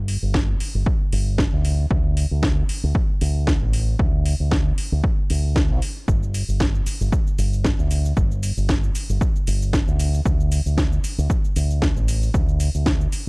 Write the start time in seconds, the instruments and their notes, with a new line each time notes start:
Already playing: fingered electric bass G1
0.08 open hi-hat
0.22 fingered electric bass G1
0.34 kick, snare
0.60 muted fingered electric bass stroke, open hi-hat
0.75 fingered electric bass G1
0.86 kick
1.12 fingered electric bass G1, open hi-hat
1.38 kick, snare
1.53 fingered electric bass D2
1.65 open hi-hat
1.91 fingered electric bass D2, kick
2.17 open hi-hat
2.31 fingered electric bass D2
2.43 kick, snare
2.69 muted fingered electric bass stroke, open hi-hat
2.83 fingered electric bass D2
2.95 kick
3.21 fingered electric bass D2, open hi-hat
3.47 kick, snare
3.62 fingered electric bass A1
3.73 open hi-hat
3.99 fingered electric bass D2, kick
4.26 open hi-hat
4.40 fingered electric bass D2
4.51 kick, snare
4.78 muted fingered electric bass stroke, open hi-hat
4.92 fingered electric bass D2
5.04 kick
5.30 fingered electric bass D2, open hi-hat
5.56 kick, snare
5.70 fingered electric bass C2
5.82 open hi-hat
6.08 fingered electric bass G1, kick, cabasa
6.23 cabasa
6.34 open hi-hat, cabasa
6.48 fingered electric bass G1, cabasa
6.60 kick, snare, cabasa
6.75 cabasa
6.86 muted fingered electric bass stroke, open hi-hat, cabasa
7.01 fingered electric bass G1, cabasa
7.12 kick, cabasa
7.27 cabasa
7.38 fingered electric bass G1, open hi-hat, cabasa
7.53 cabasa
7.65 kick, snare, cabasa
7.79 fingered electric bass D2, cabasa
7.91 open hi-hat, cabasa
8.05 cabasa
8.17 fingered electric bass G1, kick, cabasa
8.31 cabasa
8.43 open hi-hat, cabasa
8.57 fingered electric bass G1, cabasa
8.69 kick, snare, cabasa
8.84 cabasa
8.95 muted fingered electric bass stroke, open hi-hat, cabasa
9.09 fingered electric bass G1, cabasa
9.21 kick, cabasa
9.36 cabasa
9.47 fingered electric bass G1, open hi-hat, cabasa
9.62 cabasa
9.73 kick, snare, cabasa
9.88 fingered electric bass D2, cabasa
10.00 open hi-hat, cabasa
10.14 cabasa
10.26 fingered electric bass D2, kick, cabasa
10.40 cabasa
10.52 open hi-hat, cabasa
10.66 fingered electric bass D2, cabasa
10.78 kick, snare, cabasa
10.93 cabasa
11.04 muted fingered electric bass stroke, open hi-hat, cabasa
11.18 fingered electric bass D2, cabasa
11.30 kick, cabasa
11.45 cabasa
11.56 fingered electric bass D2, open hi-hat, cabasa
11.71 cabasa
11.82 kick, snare, cabasa
11.96 fingered electric bass A1, cabasa
12.08 open hi-hat, cabasa
12.23 cabasa
12.34 fingered electric bass D2, kick, cabasa
12.49 cabasa
12.60 open hi-hat, cabasa
12.75 fingered electric bass D2, cabasa
12.86 kick, snare, cabasa
13.01 cabasa
13.12 muted fingered electric bass stroke, open hi-hat, cabasa